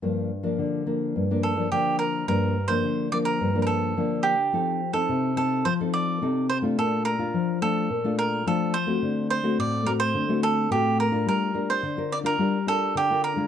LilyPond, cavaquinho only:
\new Staff \with { instrumentName = "Cavaquinho" } { \time 4/4 \key g \minor \tempo 4 = 107 r2 r8 a'8 g'8 bes'8 | bes'8. c''8. d''16 bes'8~ bes'32 bes'32 a'4 g'8~ | g'8. a'8. a'8 c''8 d''4 c''8 | a'8 bes'4 a'4 bes'8 a'8 c''8~ |
c''8 c''8 d''8 bes'16 c''8. a'8 g'8 bes'8 | bes'8. c''8. d''16 bes'8. a'8 g'8 bes'8 | }